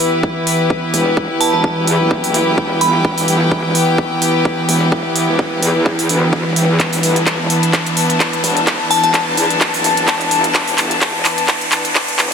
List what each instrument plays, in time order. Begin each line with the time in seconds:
Already playing: string section E3 B3 E4 G4 B4, riser
0.00 open hi-hat
0.23 kick
0.36 string section G5
0.47 open hi-hat
0.70 kick
0.94 wobble bass E1, open hi-hat
1.17 kick
1.41 synth bell A5, open hi-hat
1.53 wobble bass E1, synth bell A5
1.64 kick
1.87 wobble bass E2, open hi-hat
2.00 wobble bass F#1
2.11 kick
2.24 wobble bass F#1, open hi-hat
2.34 open hi-hat
2.58 wobble bass E1, kick
2.81 wobble bass G1, synth bell B5, open hi-hat
3.05 wobble bass E1, kick
3.18 open hi-hat
3.28 wobble bass G1, open hi-hat
3.52 kick
3.64 wobble bass E1
3.75 open hi-hat
3.98 kick
4.22 open hi-hat
4.45 kick
4.69 wobble bass E1, open hi-hat
4.92 kick
5.16 open hi-hat
5.29 wobble bass E1
5.39 kick
5.63 wobble bass E2, open hi-hat
5.76 wobble bass E2
5.86 kick
5.99 open hi-hat
6.09 wobble bass D2, open hi-hat
6.33 kick
6.46 wobble bass E1
6.56 open hi-hat
6.69 wobble bass E2
6.80 wobble bass E1, string section D4, kick, clap, closed hi-hat
6.93 open hi-hat
7.03 wobble bass G1, open hi-hat
7.16 closed hi-hat
7.27 kick, clap, closed hi-hat
7.40 wobble bass E1
7.44 string section A5
7.50 open hi-hat
7.63 closed hi-hat
7.73 kick, clap, closed hi-hat
7.86 closed hi-hat
7.97 open hi-hat
8.10 closed hi-hat
8.20 kick, clap, closed hi-hat
8.33 closed hi-hat
8.44 wobble bass E1, open hi-hat
8.57 closed hi-hat
8.67 kick, clap, closed hi-hat
8.91 synth bell A5, open hi-hat
9.03 wobble bass E1, synth bell A5, closed hi-hat
9.14 kick, clap, closed hi-hat
9.37 wobble bass E2, open hi-hat
9.50 wobble bass F#1, closed hi-hat
9.61 kick, clap, closed hi-hat
9.74 wobble bass F#1, open hi-hat
9.84 open hi-hat
9.97 closed hi-hat
10.08 wobble bass E1, kick, clap, closed hi-hat
10.21 closed hi-hat
10.31 wobble bass G1, open hi-hat
10.44 closed hi-hat
10.55 wobble bass E1, kick, clap, closed hi-hat
10.68 open hi-hat
10.78 wobble bass G1, clap, open hi-hat
10.91 closed hi-hat
11.02 kick, clap, closed hi-hat
11.15 wobble bass E1
11.25 clap, open hi-hat
11.38 closed hi-hat
11.48 kick, clap, closed hi-hat
11.61 closed hi-hat
11.72 clap, open hi-hat
11.85 closed hi-hat
11.95 kick, clap, closed hi-hat
12.08 closed hi-hat
12.19 wobble bass E1, clap, open hi-hat